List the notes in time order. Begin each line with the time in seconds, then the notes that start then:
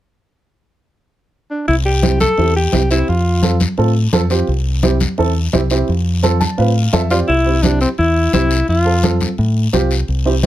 1.50 D4
1.68 C2 E4, long guiro
1.85 G4
2.02 C4 E4 G4, high conga, short guiro
2.20 A4, high conga, short guiro
2.38 E2 C4 E4 G4, long guiro
2.56 G4
2.72 C2 C4 E4 G4, high conga, short guiro
2.90 C4 E4 G4, short guiro
3.08 F2 F4, long guiro
3.42 C4 F4 A4, high conga, short guiro
3.60 high conga, short guiro
3.78 A2 C4 F4 A4, long guiro
4.13 F2 C4 F4 A4, high conga, short guiro
4.30 C4 F4 G4, short guiro
4.47 C2, long guiro
4.83 C4 E4 G4, high conga, short guiro
5.00 high conga, short guiro
5.18 E2 C4 E4 A4, long guiro
5.52 C2 C4 E4 G4, high conga, short guiro
5.70 C4 E4 G4, short guiro
5.88 F2, long guiro
6.23 C4 F4 A4, high conga, short guiro
6.40 A5, high conga, short guiro
6.58 A2 C4 F4 B4 F5, long guiro
6.93 F2 C4 F4 A4 E5, high conga, short guiro
7.10 C4 F4 G4 D5, short guiro
7.28 C2 E4, long guiro
7.46 C4 E4 G4
7.63 C4 D4 E4 G4, high conga, short guiro
7.81 C4, short guiro
7.98 E2 E4, long guiro
8.33 C2 C4 E4 G4, high conga, short guiro
8.51 short guiro
8.68 F2 F4, long guiro
8.85 C4 F4 A4
9.03 C4 F4 A4, high conga, short guiro
9.20 high conga, short guiro
9.38 A2, long guiro
9.73 C2 C4 F4 G4, high conga, short guiro
9.91 short guiro
10.08 C2, long guiro
10.25 C4 E4 G4
10.43 C4